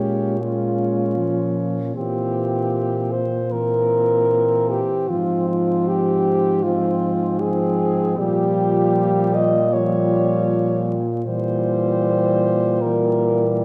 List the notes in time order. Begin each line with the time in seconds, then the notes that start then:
Already playing: A#2 G#3 C#4 G4
0.40 G#3 C#4 F4
1.17 F3
1.95 A#2 E3 C4 G4
3.11 C5
3.51 E3 C4 A#4
4.70 G4
5.09 G#2 F3 C4 F4
5.49 F4
5.87 G4
6.63 F3 C4 F4
7.41 F3 C4 G#4
8.18 A#2 F3 G3 G4
9.35 D#5
9.73 F3 G3 C#5
11.25 A#2 E3 G3 C5
12.81 E3 G3 A#4